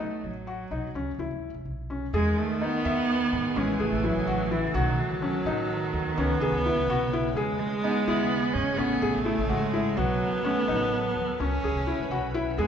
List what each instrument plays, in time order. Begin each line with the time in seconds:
0.00 cello A3, felt piano D#4
0.24 upright bass A1, cello F#3
0.47 felt piano F#4
0.71 upright bass B1, felt piano D#4
0.94 upright bass C#2, felt piano C#4
1.19 upright bass C#2, felt piano E4
1.31 upright bass C#2
1.54 upright bass C#2
1.65 upright bass B1
1.90 felt piano C#4
2.12 upright bass E2, ambient pad D#3 B3 G#4, viola D#3, cello G#3, felt piano G#4
2.38 cello A3
2.61 cello B3, felt piano D#4
2.85 upright bass D#2, felt piano E5
3.33 upright bass G#2
3.55 upright bass A1, ambient pad C#3 A3, viola E3, cello G#3, felt piano C#4
3.80 upright bass A1, cello A3, felt piano G#4
3.92 upright bass A1
4.03 cello F#3, felt piano E4
4.16 upright bass A1
4.27 upright bass A1, felt piano F#4
4.51 cello E3, felt piano E4
4.73 upright bass B1, ambient pad D#3 B3 A4, cello D#3, viola F#3, felt piano F#4
4.99 cello E3
5.22 cello F#3, felt piano C#4
5.45 upright bass A1, cello D#3, felt piano D#4
5.93 upright bass D#2
6.16 upright bass C#2, ambient pad C#3 C#4 B4, viola B3, felt piano C#4
6.40 upright bass C#2, felt piano G#4
6.52 upright bass C#2
6.66 felt piano E4
6.76 upright bass C#2
6.88 upright bass B1, felt piano F#4
7.13 felt piano E4
7.35 upright bass E2, viola G#3, felt piano G#4, ambient pad G#4 D#5
7.59 cello G#3
7.83 cello B3, felt piano D#4
8.06 upright bass D#2, cello B3, felt piano E4
8.53 upright bass G#2, cello C#4
8.72 viola G#3
8.77 upright bass A1, ambient pad C#3 C#4, viola A3, cello B3, felt piano C#4
9.02 upright bass A1, felt piano G#4
9.15 upright bass A1
9.24 cello A3, felt piano E4
9.39 upright bass A1
9.49 upright bass G#1, cello G#3, felt piano F#4
9.73 felt piano E4
9.96 upright bass B1, ambient pad D#3 B3 A4, cello F#3, viola B3, felt piano F#4
10.45 cello A3, felt piano C#4
10.68 upright bass A1, cello F#3, felt piano D#4
11.16 upright bass D#2
11.39 upright bass C#2, viola C#4, felt piano C#4, ambient pad C#4 E4 B4
11.64 upright bass C#2, felt piano G#4
11.75 upright bass C#2
11.87 felt piano E4
11.98 upright bass C#2
12.10 upright bass B1, felt piano F#4
12.34 felt piano E4
12.57 upright bass E2, cello G#3, viola B3, ambient pad G#4 D#5, felt piano G#4